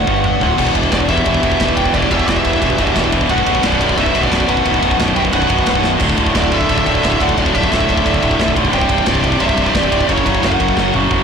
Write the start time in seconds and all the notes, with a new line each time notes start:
Already playing: F#5
0.07 G1 G2, kick
0.24 F#5, mid tom
0.41 D1 D2 F#5, floor tom
0.57 E1 E2 B2 E3, kick, crash
0.67 kick
0.75 E1 E2 B2 E3, kick, ride
0.83 kick
0.91 E1 E2 B2 E3 G4 D5, kick, snare, ride
1.00 kick
1.08 E2 B2 E3 G4 E5, kick, ride
1.18 kick
1.26 E1 E2 B2 E3, kick, ride
1.34 kick
1.42 E1 E2 B2 E3, kick, ride
1.52 kick
1.59 E1 E2 B2 E3, kick, snare, ride
1.68 kick
1.77 E1 E2 B2 E3 B4 G5, kick, ride
1.86 kick
1.94 E1 E2 B2 E3 G4 D5, kick, ride
2.02 kick
2.11 E1 E2 B2 E3 G4 E5, kick, ride
2.19 kick
2.28 E1 E2 B2 E3 G4 E5, kick, snare, ride
2.36 kick
2.44 E1 E2 B2 E3, kick, ride
2.53 kick
2.61 E1 E2 B2 E3, kick, ride
2.70 kick
2.78 E1 E2 B2 E3, kick, ride
2.87 kick
2.95 E1 E2 B2 E3, kick, snare, ride
3.04 kick
3.12 E2 B2 E3, kick, ride
3.21 kick
3.29 B0 B1 F#2 B2 B4 F#5, kick, ride
3.38 kick
3.47 B0 B1 F#2 B2, kick, ride
3.55 kick
3.63 B0 B1 F#2 B2 F#4 D5, kick, snare, ride
3.72 kick
3.80 B1 F#2 B2, kick, ride
3.89 kick
3.97 B0 B1 F#2 B2 B4 E5, kick, ride
4.06 kick
4.14 B0 B1 F#2 B2, kick, ride
4.23 F#4 D5, kick
4.32 B0 B1 F#2 B2, kick, snare, ride
4.40 kick
4.48 B0 B1 F#2 B2 B4 F#5, kick, ride
4.57 kick
4.65 B0 B1 F#2 B2, kick, ride
4.74 kick
4.82 B0 B1 F#2 B2, kick, ride
4.91 kick
4.98 B0 B1 F#2 B2, kick, snare, ride
5.08 kick
5.16 B0 B1 F#2 B2 B4 G5, kick, ride
5.25 kick
5.32 B0 B1 F#2 B2 B4 F#5, kick, ride
5.42 kick
5.49 B0 B1 F#2 B2, kick, ride
5.59 kick
5.66 B0 B1 F#2 B2 B4 F#5, kick, snare, ride
5.75 kick
5.84 B1 F#2 B2, snare
6.00 D1 D2 A2 D3, kick, crash
6.09 kick
6.17 D1 D2 A2 D3, kick, ride
6.27 kick
6.34 D1 D2 A2 D3 F#4 D5, kick, snare, ride
6.44 kick
6.52 D2 A2 D3 A4 E5, kick, ride
6.61 kick
6.69 D1 D2 A2 D3, kick, ride
6.78 kick
6.86 D1 D2 A2 D3, kick, ride
6.95 kick
7.03 D1 D2 A2 D3, kick, snare, ride
7.12 kick
7.20 D1 D2 A2 D3 A4 F#5, kick, ride
7.29 kick
7.36 D1 D2 A2 D3 F#4 D5, kick, ride
7.46 kick
7.54 D1 D2 A2 D3 G4 E5, kick, ride
7.63 kick
7.71 D1 D2 A2 D3 A4 E5, kick, snare, ride
7.80 kick
7.88 D1 D2 A2 D3, kick, ride
7.97 kick
8.06 D1 D2 A2 D3, kick, ride
8.14 kick
8.23 D1 D2 A2 D3, kick, ride
8.31 kick
8.39 B0 D2 A2 D3, kick, snare, ride
8.48 kick
8.56 D2 A2 D3, kick, ride
8.65 kick
8.73 C1 C2 G2 C3 C5 G5, kick, ride
8.81 kick
8.89 C1 C2 G2 C3, kick, ride
8.98 kick
9.06 C1 C2 G2 C3 G4 D5, kick, snare, ride
9.15 kick
9.23 C2 G2 C3, kick, ride
9.32 kick
9.40 C1 C2 G2 C3 E5, kick, ride
9.44 G4
9.49 kick
9.57 C1 C2 G2 C3, kick, ride
9.66 G4 D5, kick
9.74 C1 C2 G2 C3, kick, snare, ride
9.83 kick
9.92 C1 C2 G2 C3, kick, ride
10.01 kick
10.08 F#1 F#2 C#3 F#3 C#5, kick, ride
10.13 E4
10.18 kick
10.26 F#1 F#2 C#3 F#3, kick, ride
10.35 kick
10.43 F#1 F#2 C#3 F#3 A#4 F#5, kick, snare, ride
10.52 kick
10.60 F#1 F#2 C#3 F#3, kick, ride
10.68 kick
10.77 F#1 F#2 C#3 F#3, kick, snare
10.94 F#1 F#2 C#3 F#3, high tom
11.11 F#1 F#2 C#3 F#3, kick, mid tom